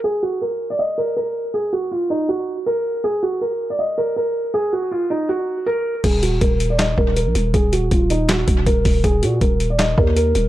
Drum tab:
CC |--------|--------|--------|--------|
HH |--------|--------|--------|--------|
CP |--------|--------|--------|--------|
SD |--------|--------|--------|--------|
BD |--------|--------|--------|--------|

CC |x-------|--------|--------|
HH |xxxxx-xx|xxxxxxxo|xxxxx-xx|
CP |----x---|----x---|----x---|
SD |----o---|----o---|----o---|
BD |o-o--o--|o-o--ooo|o-o--o--|